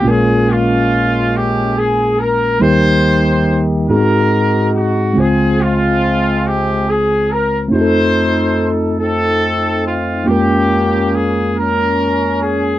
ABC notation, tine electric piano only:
X:1
M:6/8
L:1/8
Q:3/8=47
K:Bbdor
V:1 name="Tine electric piano"
[B,,,B,,A,B,DFB]6 | [E,,E,G,B,EGB]3 [A,,A,_C=CE_GA]3 | [D,,D,A,CFc]6 | [F,,=A,CEFG=A]6 |
[F,,A,B,DFB]6 |]